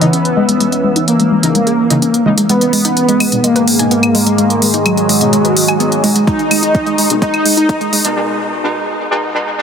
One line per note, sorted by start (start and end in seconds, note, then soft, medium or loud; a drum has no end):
0.00 0.09 C#3 medium
0.00 2.45 E3 medium
0.00 0.09 E3 medium
0.00 0.98 B3 loud
0.00 2.45 C#4 medium
0.00 0.09 D#4 medium
0.00 0.05 D#5 loud
0.00 2.46 E6 medium
0.00 closed hi-hat medium
0.13 0.17 C#4 medium
0.13 closed hi-hat medium
0.25 closed hi-hat soft
0.37 0.43 G#3 loud
0.49 0.55 G#3 medium
0.49 closed hi-hat medium
0.60 0.67 G#3 medium
0.60 closed hi-hat medium
0.72 closed hi-hat soft
0.84 0.94 G#3 medium
0.96 1.02 D#4 medium
0.96 closed hi-hat medium
1.08 2.40 A#3 loud
1.08 closed hi-hat medium
1.20 1.29 G#3 medium
1.20 closed hi-hat soft
1.31 1.38 G#3 medium
1.43 1.56 C#3 medium
1.43 1.56 E3 medium
1.43 1.56 D#4 medium
1.43 closed hi-hat medium
1.55 1.61 G#3 medium
1.55 closed hi-hat medium
1.67 1.71 G#4 medium
1.67 closed hi-hat soft
1.90 1.98 C#3 medium
1.90 1.98 E3 medium
1.90 1.98 D#4 medium
1.90 1.94 D#5 loud
1.90 closed hi-hat medium
2.02 2.06 C#4 medium
2.02 closed hi-hat medium
2.14 closed hi-hat soft
2.26 2.34 C#3 medium
2.26 2.34 E3 medium
2.26 2.32 G#3 loud
2.26 2.34 D#4 loud
2.38 2.44 G#3 medium
2.38 closed hi-hat medium
2.49 8.16 G#2 medium
2.49 8.16 D#3 medium
2.49 2.56 G#3 medium
2.49 8.12 G#3 medium
2.49 3.45 B3 loud
2.49 6.24 G#4 medium
2.49 8.12 D#5 medium
2.49 closed hi-hat medium
2.61 closed hi-hat soft
2.73 2.83 G#3 medium
2.73 open hi-hat medium
2.85 2.91 D#4 medium
2.85 closed hi-hat medium
2.97 closed hi-hat medium
3.09 3.18 G#3 medium
3.09 closed hi-hat soft
3.20 3.27 G#3 medium
3.20 open hi-hat medium
3.20 claves soft
3.32 3.77 B2 medium
3.32 3.77 G#3 medium
3.32 3.77 D#4 medium
3.32 closed hi-hat medium
3.44 3.50 G#3 medium
3.44 4.76 A#3 loud
3.44 closed hi-hat medium
3.56 3.60 B4 medium
3.56 closed hi-hat soft
3.68 open hi-hat loud
3.79 3.87 B2 medium
3.79 3.87 G#3 medium
3.79 3.87 D#4 medium
3.79 3.83 G#5 loud
3.79 closed hi-hat medium
3.91 3.95 B3 medium
3.91 closed hi-hat medium
4.03 closed hi-hat soft
4.03 claves soft
4.15 4.21 G#3 loud
4.15 open hi-hat medium
4.27 4.33 G#3 medium
4.27 closed hi-hat medium
4.38 4.45 G#3 medium
4.38 closed hi-hat medium
4.50 closed hi-hat soft
4.62 4.72 G#3 medium
4.62 open hi-hat loud
4.74 4.80 D#4 medium
4.74 closed hi-hat medium
4.86 6.18 F#3 medium
4.86 closed hi-hat medium
4.86 claves soft
4.97 5.07 G#3 medium
4.97 closed hi-hat soft
5.09 5.16 G#3 medium
5.09 open hi-hat medium
5.21 5.34 B2 medium
5.21 5.34 G#3 medium
5.21 5.34 D#4 medium
5.21 closed hi-hat medium
5.33 5.39 G#3 medium
5.33 closed hi-hat medium
5.45 5.49 B4 medium
5.45 closed hi-hat soft
5.57 open hi-hat loud
5.68 5.72 G#5 loud
5.68 closed hi-hat medium
5.68 claves soft
5.80 5.84 B3 medium
5.80 closed hi-hat medium
5.92 closed hi-hat soft
6.04 6.27 B2 medium
6.04 6.27 G#3 medium
6.04 6.10 G#3 loud
6.04 6.27 D#4 medium
6.04 open hi-hat medium
6.16 6.22 G#3 medium
6.16 closed hi-hat medium
6.27 6.34 G#3 medium
6.27 7.12 D#4 loud
6.27 8.14 A#4 medium
6.27 kick loud
6.27 closed hi-hat medium
6.39 closed hi-hat soft
6.51 6.61 G#3 medium
6.51 open hi-hat loud
6.51 claves soft
6.63 6.69 D#4 medium
6.63 closed hi-hat medium
6.75 kick loud
6.75 closed hi-hat medium
6.86 6.96 G#3 medium
6.86 closed hi-hat soft
6.98 7.05 G#3 medium
6.98 open hi-hat loud
7.10 7.20 B2 medium
7.10 7.20 G#3 medium
7.10 7.20 D#4 medium
7.10 closed hi-hat medium
7.22 7.28 G#3 medium
7.22 8.07 D#4 loud
7.22 kick loud
7.22 closed hi-hat medium
7.34 closed hi-hat soft
7.34 claves medium
7.45 7.55 G#3 medium
7.45 open hi-hat loud
7.57 7.64 D#4 medium
7.57 closed hi-hat medium
7.69 kick loud
7.69 closed hi-hat medium
7.81 7.91 G#3 medium
7.81 closed hi-hat soft
7.93 7.99 G#3 medium
7.93 open hi-hat loud
8.05 8.15 B2 medium
8.05 8.15 G#3 medium
8.05 8.15 D#4 medium
8.05 closed hi-hat medium
8.16 8.61 B2 medium
8.16 8.61 G#3 medium
8.16 8.61 D#4 medium
8.64 9.08 B2 medium
8.64 9.08 G#3 medium
8.64 9.08 D#4 loud
9.11 9.33 B2 loud
9.11 9.33 G#3 medium
9.11 9.33 D#4 loud
9.35 9.56 B2 medium
9.35 9.56 G#3 medium
9.35 9.56 D#4 loud
9.58 9.62 B2 medium
9.58 9.62 G#3 medium
9.58 9.62 D#4 medium